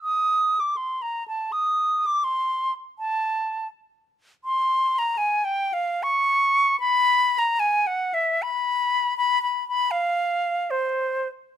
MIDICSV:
0, 0, Header, 1, 2, 480
1, 0, Start_track
1, 0, Tempo, 735294
1, 24, Time_signature, 3, 2, 24, 8
1, 3384, Tempo, 847458
1, 3864, Tempo, 774194
1, 4824, Tempo, 853485
1, 5304, Tempo, 748130
1, 6264, Tempo, 800000
1, 6744, Tempo, 890208
1, 7198, End_track
2, 0, Start_track
2, 0, Title_t, "Flute"
2, 0, Program_c, 0, 73
2, 17, Note_on_c, 0, 87, 64
2, 391, Note_on_c, 0, 86, 53
2, 401, Note_off_c, 0, 87, 0
2, 500, Note_on_c, 0, 84, 61
2, 510, Note_off_c, 0, 86, 0
2, 666, Note_on_c, 0, 82, 59
2, 675, Note_off_c, 0, 84, 0
2, 831, Note_off_c, 0, 82, 0
2, 834, Note_on_c, 0, 81, 59
2, 994, Note_on_c, 0, 87, 66
2, 1003, Note_off_c, 0, 81, 0
2, 1345, Note_on_c, 0, 86, 64
2, 1355, Note_off_c, 0, 87, 0
2, 1462, Note_on_c, 0, 84, 67
2, 1472, Note_off_c, 0, 86, 0
2, 1780, Note_off_c, 0, 84, 0
2, 1951, Note_on_c, 0, 81, 67
2, 2398, Note_off_c, 0, 81, 0
2, 2901, Note_on_c, 0, 84, 74
2, 3255, Note_on_c, 0, 82, 74
2, 3264, Note_off_c, 0, 84, 0
2, 3379, Note_on_c, 0, 80, 79
2, 3388, Note_off_c, 0, 82, 0
2, 3531, Note_on_c, 0, 79, 73
2, 3540, Note_off_c, 0, 80, 0
2, 3695, Note_on_c, 0, 77, 76
2, 3703, Note_off_c, 0, 79, 0
2, 3863, Note_on_c, 0, 85, 87
2, 3873, Note_off_c, 0, 77, 0
2, 4336, Note_off_c, 0, 85, 0
2, 4340, Note_on_c, 0, 83, 93
2, 4703, Note_on_c, 0, 82, 78
2, 4712, Note_off_c, 0, 83, 0
2, 4833, Note_on_c, 0, 80, 83
2, 4842, Note_off_c, 0, 82, 0
2, 4986, Note_on_c, 0, 78, 76
2, 4995, Note_off_c, 0, 80, 0
2, 5139, Note_on_c, 0, 76, 79
2, 5147, Note_off_c, 0, 78, 0
2, 5298, Note_on_c, 0, 83, 86
2, 5307, Note_off_c, 0, 76, 0
2, 5777, Note_off_c, 0, 83, 0
2, 5781, Note_on_c, 0, 83, 86
2, 5938, Note_off_c, 0, 83, 0
2, 5941, Note_on_c, 0, 83, 79
2, 6099, Note_off_c, 0, 83, 0
2, 6107, Note_on_c, 0, 83, 88
2, 6252, Note_on_c, 0, 77, 89
2, 6262, Note_off_c, 0, 83, 0
2, 6730, Note_on_c, 0, 72, 70
2, 6739, Note_off_c, 0, 77, 0
2, 7044, Note_off_c, 0, 72, 0
2, 7198, End_track
0, 0, End_of_file